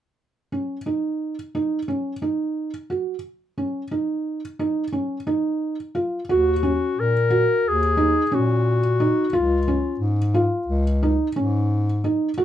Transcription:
0.52 0.76 C#4 soft
0.86 1.34 D#4 soft
1.55 1.78 D#4 medium
1.88 2.12 C#4 soft
2.22 2.70 D#4 medium
2.90 3.14 F#4 soft
3.58 3.82 C#4 soft
3.91 4.39 D#4 soft
4.59 4.83 D#4 medium
4.92 5.17 C#4 soft
5.27 5.75 D#4 medium
5.95 6.19 F4 soft
6.29 6.82 D#2 medium
6.29 6.53 F#4 medium
6.29 7.01 F#4 medium
6.63 7.11 C#4 medium
6.97 7.50 A#2 medium
6.97 7.70 A#4 medium
7.30 7.78 F#4 medium
7.65 8.18 D#2 medium
7.65 8.36 G#4 medium
7.97 8.22 D#4 medium
8.32 9.12 A#2 medium
8.32 8.80 C#4 medium
8.32 9.36 F#4 medium
9.00 9.24 D#4 medium
9.33 9.86 C#2 medium
9.33 9.57 F4 medium
9.33 10.10 F4 medium
9.68 10.16 C#4 medium
10.00 10.53 G#2 medium
10.34 10.83 F4 medium
10.67 11.21 C#2 medium
11.03 11.27 D#4 medium
11.36 12.16 G#2 medium
11.36 11.84 C#4 medium
12.04 12.28 D#4 medium
12.38 12.45 F#2 medium
12.38 12.45 F#4 medium

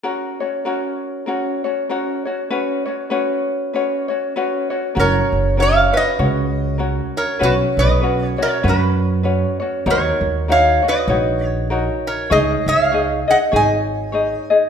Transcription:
0.03 0.40 C#4 medium
0.03 0.40 F#4 medium
0.03 0.40 A#4 medium
0.03 0.39 C#5 medium
0.40 0.65 C#4 soft
0.40 0.65 F#4 soft
0.40 0.66 C#5 soft
0.65 1.27 C#4 medium
0.65 1.27 F#4 medium
0.65 1.25 A#4 medium
0.65 1.28 C#5 medium
1.26 1.63 C#4 medium
1.26 1.64 F#4 medium
1.26 1.63 A#4 medium
1.26 1.63 C#5 medium
1.64 1.89 C#4 soft
1.64 1.89 F#4 soft
1.64 1.89 C#5 soft
1.89 2.25 C#4 medium
1.89 2.26 F#4 medium
1.89 2.25 A#4 medium
1.89 2.24 C#5 medium
2.25 2.49 C#4 soft
2.25 2.50 F#4 soft
2.25 2.51 C#5 soft
2.50 2.86 C#4 medium
2.50 2.85 F#4 medium
2.50 2.86 B4 medium
2.50 2.84 C#5 medium
2.86 3.10 C#4 soft
2.86 3.10 F#4 soft
2.86 3.10 C#5 medium
3.10 3.74 C#4 medium
3.10 3.75 F#4 medium
3.10 3.72 B4 medium
3.10 3.75 C#5 medium
3.73 4.10 C#4 medium
3.73 4.09 F#4 medium
3.73 4.09 B4 medium
3.73 4.07 C#5 medium
4.08 4.35 C#4 soft
4.08 4.35 F#4 soft
4.08 4.34 C#5 medium
4.36 4.71 C#4 medium
4.36 4.70 F#4 medium
4.36 4.71 B4 medium
4.36 4.69 C#5 medium
4.70 4.94 C#4 soft
4.70 4.95 F#4 soft
4.70 4.95 C#5 soft
4.95 5.20 F#1 medium
4.95 5.58 C#4 medium
4.95 5.58 F#4 medium
4.95 5.56 A#4 medium
4.95 5.58 C#5 medium
4.99 5.55 A#4 medium
4.99 5.56 C#5 medium
5.32 5.89 F#1 medium
5.57 5.94 C#4 medium
5.57 5.93 F#4 medium
5.57 5.93 A#4 medium
5.57 5.91 C#5 medium
5.57 5.92 C#5 medium
5.62 5.97 F5 medium
5.93 6.18 C#4 soft
5.93 6.18 F#4 soft
5.93 6.76 B4 medium
5.93 6.18 C#5 soft
5.97 6.78 D#5 medium
6.19 6.99 C#2 medium
6.19 6.79 C#4 medium
6.19 6.79 F#4 medium
6.19 6.79 C#5 medium
6.78 7.40 C#4 medium
6.78 7.40 F#4 medium
6.78 7.39 A#4 medium
6.78 7.41 C#5 medium
7.17 7.41 A#4 medium
7.17 7.43 C#5 medium
7.39 7.65 B1 medium
7.39 8.02 C#4 medium
7.39 8.03 F#4 medium
7.39 8.00 B4 medium
7.39 7.53 B4 medium
7.39 8.03 C#5 medium
7.44 7.54 F#4 medium
7.77 8.33 B1 medium
7.77 8.36 B4 medium
7.77 8.27 D#5 medium
8.01 8.38 C#4 medium
8.01 8.38 F#4 medium
8.01 8.37 B4 medium
8.01 8.37 C#5 medium
8.27 8.41 C#5 medium
8.38 8.62 C#4 soft
8.38 8.63 F#4 soft
8.38 8.64 C#5 medium
8.42 8.64 A#4 medium
8.42 8.66 C#5 medium
8.63 9.43 F#2 medium
8.63 9.24 C#4 medium
8.63 9.24 F#4 medium
8.63 9.22 B4 medium
8.63 9.25 C#5 medium
8.68 9.59 F#4 soft
8.68 9.59 B4 medium
9.23 9.60 C#4 medium
9.23 9.61 F#4 medium
9.23 9.60 B4 medium
9.23 9.59 C#5 medium
9.60 9.86 C#4 soft
9.60 9.86 F#4 soft
9.60 9.86 C#5 soft
9.86 10.09 D#2 loud
9.86 10.49 D#4 medium
9.86 10.48 F#4 medium
9.86 10.47 A#4 medium
9.86 10.50 C#5 medium
9.90 10.45 A#4 medium
9.90 10.50 C#5 medium
10.21 10.77 D#2 medium
10.48 10.83 D#4 medium
10.48 10.83 F#4 medium
10.48 10.84 A#4 medium
10.48 10.81 C#5 medium
10.48 10.83 C#5 medium
10.48 10.86 F5 medium
10.82 11.08 D#4 soft
10.82 11.09 F#4 soft
10.82 11.08 C#5 soft
10.88 11.68 B4 medium
10.88 11.46 D#5 medium
11.08 11.87 A#1 medium
11.08 11.70 D#4 medium
11.08 11.70 F#4 medium
11.08 11.71 C#5 medium
11.46 11.68 C#5 medium
11.70 12.30 D#4 medium
11.70 12.31 F#4 medium
11.70 12.30 A#4 medium
11.70 12.30 C#5 medium
12.07 12.30 A#4 medium
12.07 12.32 C#5 medium
12.30 12.54 C#2 medium
12.30 12.91 D#4 medium
12.30 12.92 G#4 medium
12.30 12.65 G#4 medium
12.30 12.91 C#5 medium
12.30 12.92 D#5 medium
12.30 12.67 D#5 medium
12.66 13.23 C#2 medium
12.66 13.24 C#5 medium
12.66 13.31 F5 medium
12.91 13.28 D#4 medium
12.91 13.28 G#4 medium
12.91 13.28 C#5 medium
12.91 13.26 D#5 medium
13.28 13.52 D#4 soft
13.28 13.51 G#4 soft
13.28 13.52 D#5 soft
13.28 13.38 D#5 medium
13.28 13.37 F#5 medium
13.52 14.33 G#1 medium
13.52 14.12 D#4 medium
13.52 14.12 G#4 medium
13.52 14.12 C#5 medium
13.52 14.13 D#5 medium
13.56 14.48 D#5 medium
13.56 14.47 G#5 medium
14.12 14.50 D#4 medium
14.12 14.49 G#4 medium
14.12 14.49 C#5 soft
14.12 14.49 D#5 medium
14.50 14.69 D#4 soft
14.50 14.69 G#4 soft
14.50 14.69 D#5 medium

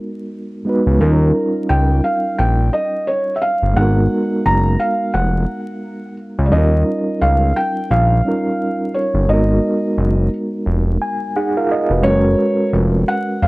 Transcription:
0.00 0.61 G#3 medium
0.00 0.62 B3 medium
0.00 0.63 D#4 medium
0.00 0.64 F#4 medium
0.00 0.65 A#4 medium
0.65 1.00 G#3 medium
0.65 1.00 B3 soft
0.65 1.00 D#4 soft
0.65 1.02 F#4 soft
0.69 1.02 B4 medium
0.87 0.99 C#2 medium
0.97 1.32 D#2 loud
0.97 3.71 G3 medium
0.97 3.72 C#4 medium
0.97 1.71 A#4 medium
1.02 3.73 D#4 medium
1.02 3.74 F4 medium
1.06 3.75 A#4 medium
1.69 2.01 C#2 medium
1.69 2.01 G5 medium
2.04 2.39 F5 medium
2.38 2.70 A#1 loud
2.38 2.74 G5 medium
2.73 3.08 D#5 medium
3.07 3.34 C#5 medium
3.36 3.42 E5 medium
3.42 3.77 F5 medium
3.62 3.75 G1 medium
3.73 4.08 G#1 medium
3.73 6.47 G#3 medium
3.73 6.48 B3 medium
3.73 4.41 F#5 medium
3.78 6.49 D#4 medium
3.78 6.50 F#4 medium
3.82 6.51 A#4 medium
4.46 4.77 F#1 loud
4.46 4.81 A#5 loud
4.79 5.12 F5 medium
5.14 5.46 F1 loud
5.14 6.13 F#5 medium
6.39 6.51 C#2 medium
6.46 8.20 G3 medium
6.46 6.52 D5 medium
6.52 6.84 D#2 loud
6.52 8.21 C#4 medium
6.52 8.22 D#4 medium
6.52 7.23 D#5 medium
6.56 8.23 F4 medium
6.56 8.24 A#4 medium
7.21 7.53 C#2 medium
7.21 7.57 F5 medium
7.56 7.88 G5 medium
7.91 8.22 A#1 loud
7.91 8.97 F5 medium
8.24 9.28 G3 soft
8.24 9.28 C#4 soft
8.24 9.28 D#4 soft
8.24 9.29 F4 soft
8.28 9.30 A#4 medium
8.94 9.29 C#5 medium
9.14 9.27 G1 medium
9.25 9.60 G#1 loud
9.25 11.98 G#3 medium
9.25 12.00 B3 medium
9.29 10.98 D#4 medium
9.29 10.99 F#4 medium
9.29 10.28 D#5 medium
9.34 11.00 A#4 medium
9.97 10.29 F#1 medium
10.66 10.98 F1 medium
11.02 11.33 G#5 medium
11.36 11.55 D#4 soft
11.36 11.55 G#4 medium
11.36 11.54 F#5 medium
11.57 11.89 F4 medium
11.57 11.89 A#4 medium
11.57 11.70 F5 medium
11.71 12.03 D#5 medium
11.90 12.03 F1 medium
11.90 12.06 F#4 medium
11.90 12.23 B4 medium
12.01 12.35 F#1 loud
12.01 13.48 G#3 medium
12.01 13.48 C#4 medium
12.01 12.69 C#5 loud
12.08 13.48 F#4 medium
12.08 13.48 A#4 medium
12.73 13.04 F1 medium
13.08 13.43 F#5 medium
13.42 13.48 F1 loud
13.42 13.48 F5 medium

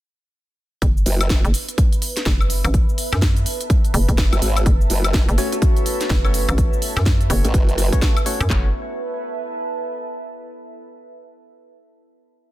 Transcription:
0.82 1.04 F#1 loud
0.82 8.49 B4 medium
0.82 kick loud
0.82 closed hi-hat medium
0.82 cabasa soft
0.97 cabasa soft
1.06 1.42 F#1 loud
1.06 open hi-hat loud
1.06 cabasa medium
1.11 8.50 E5 medium
1.21 closed hi-hat medium
1.21 cabasa soft
1.21 high woodblock medium
1.30 kick loud
1.30 snare loud
1.30 closed hi-hat medium
1.30 cabasa soft
1.45 1.52 F#1 loud
1.45 closed hi-hat soft
1.45 cabasa soft
1.54 open hi-hat loud
1.54 cabasa medium
1.69 closed hi-hat medium
1.69 cabasa soft
1.78 kick loud
1.78 closed hi-hat medium
1.78 cabasa soft
1.93 closed hi-hat soft
1.93 cabasa soft
2.02 open hi-hat loud
2.02 cabasa medium
2.17 snare soft
2.17 closed hi-hat medium
2.17 cabasa soft
2.22 2.62 F#1 loud
2.22 8.50 A5 medium
2.22 kick loud
2.22 snare loud
2.22 closed hi-hat medium
2.26 cabasa soft
2.41 cabasa soft
2.41 high woodblock medium
2.50 open hi-hat loud
2.50 cabasa medium
2.65 2.86 A1 loud
2.65 closed hi-hat medium
2.65 cabasa soft
2.65 high woodblock medium
2.74 kick loud
2.74 closed hi-hat medium
2.74 cabasa soft
2.89 cabasa soft
2.98 open hi-hat loud
2.98 cabasa medium
3.13 3.44 F#2 loud
3.13 snare soft
3.13 closed hi-hat medium
3.13 cabasa soft
3.13 high woodblock medium
3.22 kick loud
3.22 snare loud
3.22 closed hi-hat medium
3.22 cabasa soft
3.37 closed hi-hat soft
3.37 cabasa soft
3.46 open hi-hat loud
3.46 cabasa medium
3.61 closed hi-hat medium
3.61 cabasa soft
3.70 kick loud
3.70 closed hi-hat medium
3.70 cabasa soft
3.85 closed hi-hat soft
3.85 cabasa soft
3.94 4.06 F#1 medium
3.94 open hi-hat loud
3.94 cabasa medium
4.09 4.30 F#1 loud
4.09 kick medium
4.09 closed hi-hat medium
4.09 cabasa soft
4.18 kick loud
4.18 snare loud
4.18 closed hi-hat medium
4.18 cabasa soft
4.33 4.40 F#1 loud
4.33 closed hi-hat soft
4.33 cabasa soft
4.33 high woodblock medium
4.42 4.64 G#1 loud
4.42 open hi-hat loud
4.42 cabasa medium
4.57 closed hi-hat medium
4.57 cabasa soft
4.57 high woodblock medium
4.66 4.88 F#1 loud
4.66 kick loud
4.66 closed hi-hat medium
4.66 cabasa soft
4.81 cabasa soft
4.90 5.26 F#1 medium
4.90 open hi-hat loud
4.90 cabasa medium
5.04 closed hi-hat medium
5.04 cabasa soft
5.04 high woodblock medium
5.14 kick loud
5.14 snare loud
5.14 closed hi-hat medium
5.14 cabasa soft
5.29 5.37 F#1 medium
5.29 closed hi-hat soft
5.29 cabasa soft
5.38 6.21 A3 loud
5.38 6.21 C#4 medium
5.38 6.21 F#4 medium
5.38 5.47 F#4 medium
5.38 6.21 C#5 loud
5.38 open hi-hat loud
5.38 cabasa medium
5.52 5.59 F#4 medium
5.52 closed hi-hat medium
5.52 cabasa soft
5.62 kick loud
5.62 closed hi-hat medium
5.62 cabasa soft
5.77 closed hi-hat soft
5.77 cabasa soft
5.86 open hi-hat loud
5.86 cabasa medium
6.01 snare soft
6.01 closed hi-hat medium
6.01 cabasa soft
6.10 6.46 F#1 loud
6.10 6.19 B4 medium
6.10 kick loud
6.10 snare loud
6.10 closed hi-hat medium
6.10 cabasa soft
6.25 7.28 A3 medium
6.25 7.28 C#4 medium
6.25 7.28 F#4 medium
6.25 6.31 B4 medium
6.25 7.28 C#5 loud
6.25 cabasa soft
6.25 high woodblock medium
6.34 open hi-hat loud
6.34 cabasa medium
6.49 6.70 A1 loud
6.49 closed hi-hat medium
6.49 cabasa soft
6.49 high woodblock medium
6.58 kick loud
6.58 closed hi-hat medium
6.58 cabasa soft
6.73 cabasa soft
6.82 open hi-hat loud
6.82 cabasa medium
6.97 7.28 F#2 loud
6.97 snare soft
6.97 closed hi-hat medium
6.97 cabasa soft
6.97 high woodblock medium
7.06 kick loud
7.06 snare loud
7.06 closed hi-hat medium
7.06 cabasa soft
7.21 closed hi-hat soft
7.21 cabasa soft
7.30 7.42 F#1 loud
7.30 7.53 A3 medium
7.30 7.53 C#4 medium
7.30 7.53 F#4 medium
7.30 7.39 B4 medium
7.30 7.53 C#5 loud
7.30 open hi-hat loud
7.30 cabasa medium
7.44 7.53 A1 medium
7.44 7.51 B4 medium
7.44 closed hi-hat medium
7.44 cabasa soft
7.54 7.90 F#1 loud
7.54 kick loud
7.54 closed hi-hat medium
7.54 cabasa soft
7.69 closed hi-hat soft
7.69 cabasa soft
7.78 8.16 B4 medium
7.78 open hi-hat loud
7.78 cabasa medium
7.92 8.15 A3 medium
7.92 8.15 C#4 medium
7.92 8.15 F#4 medium
7.92 8.15 C#5 medium
7.92 kick medium
7.92 closed hi-hat medium
7.92 cabasa soft
8.02 kick loud
8.02 snare loud
8.02 closed hi-hat medium
8.02 cabasa soft
8.17 closed hi-hat soft
8.17 cabasa soft
8.17 high woodblock medium
8.26 8.49 A3 medium
8.26 8.49 C#4 medium
8.26 8.49 F#4 medium
8.26 8.49 C#5 medium
8.26 open hi-hat loud
8.26 cabasa medium
8.41 8.48 F#2 loud
8.41 closed hi-hat medium
8.41 cabasa soft
8.41 high woodblock medium
8.50 8.72 F#1 loud
8.50 8.69 A3 medium
8.50 8.69 C#4 medium
8.50 8.69 F#4 medium
8.50 10.38 B4 medium
8.50 8.69 C#5 loud
8.50 kick loud
8.50 clap medium
8.59 10.38 E5 medium
8.67 10.38 A5 medium

